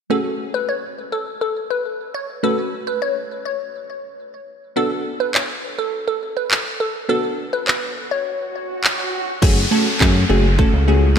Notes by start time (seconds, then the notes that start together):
0.10 A3 C#4 F#4 G#4 A4
0.54 B4
0.69 C#5
1.12 A4
1.41 A4
1.70 B4
2.14 C#5
2.43 A3 C#4 F#4 A4 B4
2.87 B4
3.02 C#5
3.45 C#5
4.76 B3 D4 F#4 A4
5.20 B4
5.35 C#5, clap
5.79 A4
6.08 A4
6.37 B4
6.51 clap
6.80 A4
7.09 B3 D4 F#4 A4, swell
7.53 B4
7.68 B4, clap
8.11 C#5
8.84 clap
9.42 F#1 A3 C#4 F#4 G#4, kick, crash, downlifter
9.71 A3 C#4 F#4 A4
10.00 F#2 A3 C#4 F#4 G#4, kick, clap
10.29 F#1 A3 C#4 F#4 G#4
10.58 A3 C#4 F#4 A4, kick
10.73 C#2
10.88 A3 C#4 F#4 G#4